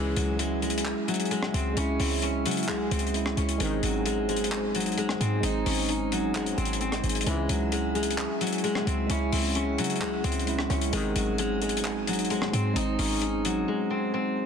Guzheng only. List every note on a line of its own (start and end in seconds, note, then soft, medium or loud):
0.00 0.38 G#3 loud
0.00 1.23 F#4 medium
0.00 1.30 G#4 medium
0.00 1.46 C5 medium
0.00 0.35 D#5 medium
0.17 1.07 F#3 medium
0.39 0.61 G#3 medium
0.62 1.30 G#3 medium
1.08 2.44 F#3 medium
1.31 2.67 G#3 medium
1.54 1.83 C4 medium
1.77 2.06 C#4 loud
2.00 2.29 C4 medium
2.23 2.97 C#4 medium
2.46 3.65 F#3 medium
2.68 3.59 G#3 medium
2.91 3.43 C4 medium
3.37 5.27 C#4 medium
3.60 4.05 G#3 loud
3.83 4.74 F#3 medium
4.06 4.28 G#3 medium
4.29 4.97 G#3 medium
4.75 6.11 F#3 medium
4.98 6.34 G#3 medium
5.21 5.72 C4 medium
5.44 5.89 D#4 loud
5.66 6.64 C#4 medium
5.89 8.60 D#4 medium
6.12 7.32 F#3 medium
6.35 7.25 G#3 medium
6.58 6.80 C4 medium
6.81 8.87 C4 medium
7.27 7.71 G#3 loud
7.49 8.39 F#3 medium
7.72 7.94 G#3 medium
7.95 8.63 G#3 medium
8.41 9.77 F#3 medium
8.64 10.00 G#3 medium
8.87 9.16 C4 medium
9.10 9.39 C#4 loud
9.32 9.62 C4 medium
9.56 10.30 C#4 medium
9.78 10.98 F#3 medium
10.01 10.92 G#3 loud
10.24 10.76 C4 medium
10.70 12.60 C#4 medium
10.93 11.38 G#3 loud
11.16 12.07 F#3 medium
11.39 11.61 G#3 medium
11.62 12.29 G#3 medium
12.08 13.44 F#3 medium
12.31 13.67 G#3 medium
12.54 13.05 C4 medium
12.76 13.22 D#4 loud
12.99 13.96 C#4 medium
13.22 14.46 D#4 medium
13.45 14.46 F#3 medium
13.68 14.46 G#3 medium
13.90 14.13 C4 medium
14.14 14.46 C4 medium